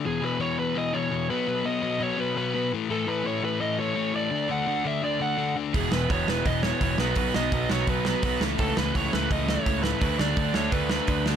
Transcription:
0.05 overdriven electric guitar E2 B2 E3, lead electric guitar G#4
0.21 overdriven electric guitar E2 B2 E3, lead electric guitar B4
0.39 overdriven electric guitar E2 B2 E3, lead electric guitar C#5
0.58 overdriven electric guitar E2 B2 E3, lead electric guitar B4
0.75 overdriven electric guitar E2 B2 E3, lead electric guitar D#5
0.94 overdriven electric guitar E2 B2 E3, lead electric guitar C#5
1.11 overdriven electric guitar E2 B2 E3
1.29 overdriven electric guitar B2 F#3 B3, lead electric guitar B4
1.48 overdriven electric guitar B2 F#3 B3
1.64 overdriven electric guitar B2 F#3 B3, lead electric guitar D#5
1.82 overdriven electric guitar B2 F#3 B3
2.00 overdriven electric guitar B2 F#3 B3, lead electric guitar C#5
2.18 overdriven electric guitar B2 F#3 B3, lead electric guitar B4
2.36 overdriven electric guitar B2 F#3 B3, lead electric guitar B4
2.54 overdriven electric guitar B2 F#3 B3
2.73 overdriven electric guitar A2 E3 A3
2.90 overdriven electric guitar A2 E3 A3, lead electric guitar A4
3.07 overdriven electric guitar A2 E3 A3, lead electric guitar B4
3.24 overdriven electric guitar A2 E3 A3, lead electric guitar C#5
3.42 overdriven electric guitar A2 E3 A3, lead electric guitar B4
3.60 overdriven electric guitar A2 E3 A3, lead electric guitar D#5
3.79 overdriven electric guitar A2 E3 A3, lead electric guitar C#5
3.95 overdriven electric guitar A2 E3 A3
4.14 overdriven electric guitar A2 E3 A3, lead electric guitar D5
4.31 overdriven electric guitar D3 A3 D4
4.49 overdriven electric guitar D3 A3 D4, lead electric guitar F#5
4.66 overdriven electric guitar D3 A3 D4
4.85 overdriven electric guitar D3 A3 D4, lead electric guitar E5
5.03 overdriven electric guitar D3 A3 D4, lead electric guitar D5
5.20 overdriven electric guitar D3 A3 D4, lead electric guitar F#5
5.37 overdriven electric guitar D3 A3 D4
5.56 overdriven electric guitar D3 A3 D4
5.74 picked electric bass E1, overdriven electric guitar E2 B2 E3 G#3 B3 E4, lead electric guitar G#4, kick, open hi-hat
5.92 picked electric bass E1, overdriven electric guitar E2 B2 E3 G#3 B3 E4, lead electric guitar B4, snare
6.10 picked electric bass E1, overdriven electric guitar E2 B2 E3 G#3 B3 E4, lead electric guitar C#5, kick, open hi-hat
6.28 picked electric bass E1, overdriven electric guitar E2 B2 E3 G#3 B3 E4, lead electric guitar B4, snare
6.46 picked electric bass E1, overdriven electric guitar E2 B2 E3 G#3 B3 E4, lead electric guitar D#5, kick, open hi-hat
6.63 overdriven electric guitar E2 B2 E3 G#3 B3 E4, lead electric guitar C#5, snare
6.80 picked electric bass E1, overdriven electric guitar E2 B2 E3 G#3 B3 E4, kick, open hi-hat
6.84 overdriven electric guitar E3
6.98 picked electric bass B1, overdriven electric guitar B2 F#3 B3 D#4, lead electric guitar B4, snare
7.15 picked electric bass B1, overdriven electric guitar B2 F#3 B3 D#4, kick, open hi-hat
7.34 picked electric bass B1, overdriven electric guitar B2 F#3 B3 D#4, lead electric guitar D#5, snare
7.52 picked electric bass B1, overdriven electric guitar B2 F#3 B3 D#4, kick, open hi-hat
7.70 picked electric bass B1, overdriven electric guitar B2 F#3 B3 D#4, lead electric guitar C#5, snare
7.87 picked electric bass B1, overdriven electric guitar B2 F#3 B3 D#4, lead electric guitar B4, kick, open hi-hat
8.05 overdriven electric guitar B2 F#3 B3 D#4, lead electric guitar B4, snare
8.23 picked electric bass B1, overdriven electric guitar B2 F#3 B3 D#4, kick, open hi-hat
8.41 picked electric bass C#2, overdriven electric guitar A2 C#3 E3 A3 E4, snare
8.59 picked electric bass C#2, overdriven electric guitar A2 C#3 E3 A3 E4, lead electric guitar A4, kick, open hi-hat
8.76 picked electric bass C#2, overdriven electric guitar A2 C#3 E3 A3 E4, lead electric guitar B4, snare
8.94 picked electric bass C#2, overdriven electric guitar A2 C#3 E3 A3 E4, lead electric guitar C#5, kick, open hi-hat
9.12 picked electric bass C#2, overdriven electric guitar A2 C#3 E3 A3 E4, lead electric guitar B4, snare
9.30 picked electric bass C#2, overdriven electric guitar A2 C#3 E3 A3 E4, lead electric guitar D#5, kick, open hi-hat
9.47 overdriven electric guitar A2 C#3 E3 A3 E4, lead electric guitar C#5, snare
9.66 picked electric bass C#2, overdriven electric guitar A2 C#3 E3 A3 E4, kick, open hi-hat
9.83 overdriven electric guitar A2 C#3 E3 A3 E4, lead electric guitar B4, snare
10.01 picked electric bass D2, overdriven electric guitar D3 F#3 A3 D4, kick, open hi-hat
10.18 picked electric bass D2, overdriven electric guitar D3 F#3 A3 D4, lead electric guitar D5, snare
10.37 picked electric bass D2, overdriven electric guitar D3 F#3 A3 D4, kick, open hi-hat
10.54 picked electric bass D2, overdriven electric guitar D3 F#3 A3 D4, lead electric guitar C#5, snare
10.72 picked electric bass D2, overdriven electric guitar D3 F#3 A3 D4, lead electric guitar B4, kick, open hi-hat
10.90 overdriven electric guitar D3 F#3 A3 D4, lead electric guitar B4, snare
11.07 picked electric bass D2, overdriven electric guitar D3 F#3 A3 D4, kick, open hi-hat
11.26 overdriven electric guitar D3 F#3 A3 D4, snare

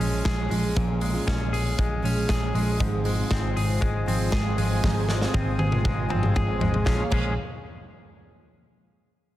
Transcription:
Already playing: clean electric guitar A#2 F3 G#3 G#4, steel-string acoustic guitar F3
0.00 picked electric bass A#1, steel-string acoustic guitar G#3 C#4 F4, open hi-hat
0.23 picked electric bass A#1, steel-string acoustic guitar F3 G#3 C#4 F4, clean electric guitar G#4, kick, snare, closed hi-hat
0.49 picked electric bass A#1, steel-string acoustic guitar F3 G#3 C#4 F4, open hi-hat
0.75 picked electric bass A#1, steel-string acoustic guitar A#2 F3 G#3 C#4 F4, kick, closed hi-hat
1.00 steel-string acoustic guitar F3 G#3 C#4 F4, open hi-hat
1.13 steel-string acoustic guitar G#3 C#4 F4
1.27 picked electric bass A#1, clean electric guitar C#4, kick, snare, closed hi-hat
1.52 picked electric bass A#1, clean electric guitar G#4, open hi-hat
1.78 picked electric bass A#1, clean electric guitar G#3, kick, closed hi-hat
2.02 picked electric bass A#1, steel-string acoustic guitar F3 G#3 C#4 F4, open hi-hat
2.26 picked electric bass A#1, steel-string acoustic guitar F3 G#3 C#4 F4, clean electric guitar G#4, kick, snare, closed hi-hat
2.53 picked electric bass A#1, steel-string acoustic guitar F3 G#3 C#4 F4, open hi-hat
2.78 picked electric bass G#1, steel-string acoustic guitar G#2 D#3 F3 G#3 C4 F4, analog synth pad F4 C5 G#5 D#6, kick, closed hi-hat
3.04 steel-string acoustic guitar F3 G#3 C4 F4, open hi-hat
3.17 steel-string acoustic guitar F3 G#3 C4 F4
3.31 picked electric bass G#1, clean electric guitar C4, kick, snare, closed hi-hat
3.56 picked electric bass G#1, clean electric guitar G#4, open hi-hat
3.81 picked electric bass G#1, clean electric guitar G#3, kick, closed hi-hat
4.06 picked electric bass G#1, steel-string acoustic guitar F3 G#3 C4 F4, open hi-hat
4.30 picked electric bass G#1, steel-string acoustic guitar F3 G#3 C4, clean electric guitar G#4, kick, snare
4.56 picked electric bass G#1, steel-string acoustic guitar F3 G#3 C4 F4, open hi-hat
4.82 picked electric bass G#1, steel-string acoustic guitar G#2 D#3 F3 G#3 C4 F4, kick, snare
5.08 steel-string acoustic guitar F3 G#3 C4 F4, snare
5.21 steel-string acoustic guitar F3 G#3 C4 F4, snare
5.34 picked electric bass G#1, clean electric guitar C4, kick, high tom
5.59 picked electric bass G#1, clean electric guitar G#4, high tom
5.72 mid tom
5.85 picked electric bass G#1, clean electric guitar G#3, kick, mid tom
6.09 picked electric bass G#1, steel-string acoustic guitar F3 G#3 C4 F4, mid tom
6.23 mid tom
6.34 picked electric bass G#1, steel-string acoustic guitar F3 G#3 C4 F4, clean electric guitar G#4, kick, mid tom
6.60 picked electric bass G#1, steel-string acoustic guitar F3 G#3 C4 F4, floor tom
6.74 floor tom
6.84 picked electric bass A#1, steel-string acoustic guitar A#2 F3 G#3 C#4 F4, analog synth pad A#3 G#4 C#5 F5, clean electric guitar G#4, kick, snare
7.10 picked electric bass A#1, steel-string acoustic guitar A#2 F3 G#3 C#4 F4, clean electric guitar G#4, kick, crash

